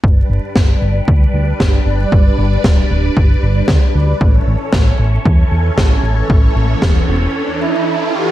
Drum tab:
SD |--o---o-|--o---o-|--o---o-|--o-----|
BD |o-o-o-o-|o-o-o-o-|o-o-o-o-|o-o-----|